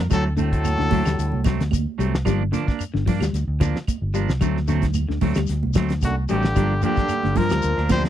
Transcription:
0.00 F2
0.10 D2 A2 F#3 A3 C4 A4, kick, snare, closed hi-hat, low conga, claves, shekere
0.37 A2 D3 A3 C4 A4, closed hi-hat, high conga, shekere
0.41 F#3
0.52 A3 C4, kick, closed hi-hat, shekere
0.64 closed hi-hat, high conga, claves, shekere
0.78 D2 D3, snare, high conga
0.91 D2 F#3 A3 C4, kick, open hi-hat, high conga, low conga, shekere
1.05 D2 G3, snare, closed hi-hat, claves, shekere
1.19 D2, closed hi-hat, shekere
1.32 C2, high conga
1.44 F#3 A3 C4, kick, snare, closed hi-hat, high conga, claves, shekere
1.60 D2, snare, closed hi-hat, shekere
1.71 kick, closed hi-hat, high conga, claves, shekere
1.98 C2 F#3 G3 A3 C4, closed hi-hat, shekere
2.15 snare, shekere
2.25 G1 F3 G3 A#3 D4, kick, snare, closed hi-hat, low conga, claves, shekere
2.52 D3 F3 A#3 D4, snare, closed hi-hat, high conga, shekere
2.67 A#3 D4, kick, snare, shekere
2.79 closed hi-hat, claves, shekere
2.94 G1 D3, snare
3.06 G2 F3 A#3 D4, kick, open hi-hat, high conga, low conga, shekere
3.20 D2 G3, snare, closed hi-hat, claves, shekere
3.33 D2, snare, closed hi-hat, shekere
3.47 D2
3.60 D3 F3 A#3 D4, kick, snare, closed hi-hat, high conga, claves, shekere
3.76 snare, shekere
3.87 kick, closed hi-hat, high conga, claves, shekere
4.02 G1
4.14 F3 G3 A#3 D4, closed hi-hat, shekere
4.29 C2, snare, shekere
4.41 D2 F#3 A3 C4, kick, closed hi-hat, low conga, claves, shekere
4.57 snare
4.68 D3 F#3 A3 C4, snare, closed hi-hat, high conga, shekere
4.82 kick, snare, closed hi-hat, low conga, shekere
4.94 closed hi-hat, high conga, claves, shekere
5.09 D2 D3, snare
5.21 D2 F#3 A3 C4, kick, open hi-hat, high conga, low conga, shekere
5.34 D2 G3, snare, closed hi-hat, claves, shekere
5.47 D2, snare, closed hi-hat, shekere
5.63 C2, high conga
5.73 D2 F#3 A3 C4, kick, snare, closed hi-hat, high conga, claves, shekere
5.89 snare, closed hi-hat, shekere
6.01 C2 F#2 D3 F#4, kick, closed hi-hat, high conga, claves, shekere
6.28 A1 G2 D3 F#3 G3 A3 C4 G4, closed hi-hat, shekere
6.43 snare, shekere
6.56 G1 F3 G3 A#3 D4, kick, closed hi-hat, low conga, claves, shekere
6.82 G2 D3 F3 A#3 D4 G4, closed hi-hat, high conga, shekere
6.96 A#3 D4, kick, snare, low conga, shekere
7.09 closed hi-hat, high conga, claves, shekere
7.23 G1 D3, snare, high conga
7.35 G2 A#2 F3 A#3 A#4, muted clean electric guitar stroke, kick, open hi-hat, high conga, low conga, shekere
7.49 D2 G3, snare, closed hi-hat, claves, shekere
7.62 D2, closed hi-hat, shekere
7.78 D2 D4, muted clean electric guitar stroke, snare
7.89 C3 F3 G3 A#3 D4 C5, kick, snare, closed hi-hat, high conga, claves, shekere
8.03 snare, shekere

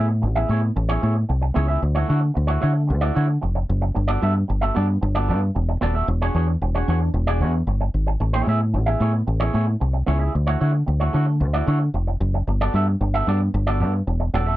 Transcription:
Already playing: A2 B3
0.08 muted clean electric guitar stroke
0.22 A1, muted clean electric guitar stroke
0.35 B3 E4 G#4 E5
0.49 A2 B3 E4 G#4 C#5
0.62 muted clean electric guitar stroke
0.76 A1, muted clean electric guitar stroke
0.89 B3 E4 G#4 C#5
1.02 A2 B3 E4 G#4 C#5
1.15 muted clean electric guitar stroke
1.29 C2, muted clean electric guitar stroke
1.42 muted clean electric guitar stroke
1.54 C#2 B3 E4 G#4 C#5
1.68 B3 E4 G#4 E5
1.81 D2, muted clean electric guitar stroke
1.95 A3 E4 F#4 C#5
2.08 D3 A3 E4 F#4 C#5
2.21 muted clean electric guitar stroke
2.34 D2, muted clean electric guitar stroke
2.47 A3 E4 F#4 C#5
2.61 D3 A3 E4 F#4 C#5
2.74 muted clean electric guitar stroke
2.87 D2, muted clean electric guitar stroke
3.01 A3 E4 F#4 D5
3.14 D3 A3 E4 F#4 C#5
3.28 muted clean electric guitar stroke
3.41 F1, muted clean electric guitar stroke
3.55 muted clean electric guitar stroke
3.70 F#1
3.81 muted clean electric guitar stroke
3.94 G1, muted clean electric guitar stroke
4.08 B3 F#4 A4 D5
4.21 G2 B3 F#4 A4 E5
4.35 muted clean electric guitar stroke
4.48 G1, muted clean electric guitar stroke
4.61 B3 F#4 A4 E5
4.75 G2 B3 F#4 A4 D5
4.88 muted clean electric guitar stroke
5.01 G1, muted clean electric guitar stroke
5.15 B3 F#4 A4 D5
5.28 G2 B3 F#4 A4 D5
5.41 muted clean electric guitar stroke
5.55 E1, muted clean electric guitar stroke
5.69 muted clean electric guitar stroke
5.81 D#1 B3 F#4 A4 D5
5.95 B3 F#4 A4 E5
6.08 E1, muted clean electric guitar stroke
6.22 D4 F#4 G#4 C#5
6.34 E2 D4 F#4 G#4 C#5
6.48 muted clean electric guitar stroke
6.62 E1, muted clean electric guitar stroke
6.75 D4 F#4 G#4 C#5
6.88 E2 D4 F#4 G#4 C#5
7.01 muted clean electric guitar stroke
7.14 E1, muted clean electric guitar stroke
7.27 D4 F#4 G#4 D5
7.40 E2 D4 F#4 G#4 C#5
7.54 muted clean electric guitar stroke
7.67 G1, muted clean electric guitar stroke
7.81 muted clean electric guitar stroke
7.94 G#1
8.07 muted clean electric guitar stroke
8.20 A1, muted clean electric guitar stroke
8.33 B3 E4 G#4 C#5
8.47 A2 B3 E4 G#4 E5
8.61 muted clean electric guitar stroke
8.74 A1, muted clean electric guitar stroke
8.86 B3 E4 G#4 E5
9.00 A2 B3 E4 G#4 C#5
9.14 muted clean electric guitar stroke
9.27 A1, muted clean electric guitar stroke
9.40 B3 E4 G#4 C#5
9.53 A2 B3 E4 G#4 C#5
9.67 muted clean electric guitar stroke
9.80 C2, muted clean electric guitar stroke
9.93 muted clean electric guitar stroke
10.06 C#2 B3 E4 G#4 C#5
10.20 B3 E4 G#4 E5
10.33 D2, muted clean electric guitar stroke
10.47 A3 E4 F#4 C#5
10.60 D3 A3 E4 F#4 C#5
10.73 muted clean electric guitar stroke
10.86 D2, muted clean electric guitar stroke
11.00 A3 E4 F#4 C#5
11.13 D3 A3 E4 F#4 C#5
11.27 muted clean electric guitar stroke
11.40 D2, muted clean electric guitar stroke
11.53 A3 E4 F#4 D5
11.66 D3 A3 E4 F#4 C#5
11.80 muted clean electric guitar stroke
11.94 F1, muted clean electric guitar stroke
12.07 muted clean electric guitar stroke
12.21 F#1
12.34 muted clean electric guitar stroke
12.47 G1, muted clean electric guitar stroke
12.61 B3 F#4 A4 D5
12.74 G2 B3 F#4 A4 E5
12.88 muted clean electric guitar stroke
13.01 G1, muted clean electric guitar stroke
13.14 B3 F#4 A4 E5
13.27 G2 B3 F#4 A4 D5
13.41 muted clean electric guitar stroke
13.54 G1, muted clean electric guitar stroke
13.67 B3 F#4 A4 D5
13.80 G2 B3 F#4 A4 D5
13.94 muted clean electric guitar stroke
14.07 E1, muted clean electric guitar stroke
14.20 muted clean electric guitar stroke
14.34 D#1 B3 F#4 A4 D5
14.47 B3 F#4 A4 E5

